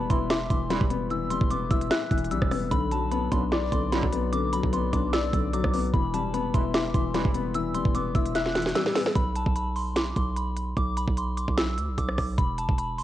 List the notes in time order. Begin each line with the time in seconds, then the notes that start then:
Already playing: E3 G3 B3
0.10 E1 B1 G2 E3 E4 C6, kick, closed hi-hat
0.30 E5 D6, snare, closed hi-hat
0.50 E1 E3 C6, kick, closed hi-hat
0.70 B1 G2 E3 G3 B5, snare, closed hi-hat
0.81 E1, kick
0.90 B3, closed hi-hat
1.10 E3 E6, closed hi-hat
1.31 G3 C6, closed hi-hat
1.41 E1, kick
1.51 B3 D6, closed hi-hat
1.71 E1 E4 E6, kick, closed hi-hat
1.81 closed hi-hat
1.91 E5 F#6, snare, closed hi-hat
2.11 E1 E3, kick, closed hi-hat
2.18 closed hi-hat
2.25 closed hi-hat
2.31 B1 G3 E6, closed hi-hat
2.42 E1, kick, cross-stick
2.51 B3, cross-stick, open hi-hat
2.71 B1 D3 B5, kick, closed hi-hat
2.92 F#3 A5, closed hi-hat
3.12 B3 B5, closed hi-hat
3.32 B1 F#2 D3 D4 C6, kick, closed hi-hat
3.52 D5 D6, snare, closed hi-hat
3.72 B1 D3 C6, kick, closed hi-hat
3.92 B1 F#2 D3 F#3 B5, snare, closed hi-hat
4.03 B1, kick
4.12 B3, closed hi-hat
4.33 D3 D6, closed hi-hat
4.53 F#3 B5, closed hi-hat
4.63 B1, kick
4.73 B3 C6, closed hi-hat
4.93 B1 D4 D6, kick, closed hi-hat
5.13 D5 E6, snare, closed hi-hat
5.33 B1 D3, kick, closed hi-hat
5.53 F#3 D6, closed hi-hat
5.64 B1, kick, cross-stick
5.73 B3, open hi-hat
5.93 E1 E3 B5, kick, closed hi-hat
6.14 G3 A5, closed hi-hat
6.34 B3 B5, closed hi-hat
6.54 E1 B1 G2 E3 E4 C6, kick, closed hi-hat
6.74 E5 D6, snare, closed hi-hat
6.94 E1 E3 C6, kick, closed hi-hat
7.14 B1 G2 E3 G3 B5, snare, closed hi-hat
7.25 E1, kick
7.34 B3, closed hi-hat
7.55 E3 E6, closed hi-hat
7.75 G3 C6, closed hi-hat
7.85 E1, kick
7.95 B3 D6, closed hi-hat
8.15 E1 E4 E6, kick, closed hi-hat
8.26 closed hi-hat
8.35 E5 F#6, snare, closed hi-hat
8.46 snare
8.55 E3, snare, closed hi-hat
8.62 snare, closed hi-hat
8.69 closed hi-hat
8.75 G3 E6, snare, closed hi-hat
8.86 snare
8.96 B3, snare, open hi-hat
9.06 snare
9.16 B1 B5, kick, closed hi-hat
9.36 A5, closed hi-hat
9.47 B1, kick
9.56 B5, closed hi-hat
9.76 C6, open hi-hat
9.96 D6, snare, closed hi-hat
10.16 B1 C6, kick, closed hi-hat
10.36 B5, closed hi-hat
10.57 closed hi-hat
10.77 B1 D6, kick, closed hi-hat
10.97 B5, closed hi-hat
11.08 B1, kick
11.17 C6, closed hi-hat
11.37 D6, closed hi-hat
11.48 B1, kick
11.57 E6, snare, closed hi-hat
11.78 D2, closed hi-hat
11.88 B1
11.98 B1 D6, kick, closed hi-hat
12.08 cross-stick
12.18 B1, kick, cross-stick, open hi-hat
12.38 E1 B5, kick, closed hi-hat
12.58 A5, closed hi-hat
12.69 E1, kick
12.78 B5, closed hi-hat
12.98 C6, open hi-hat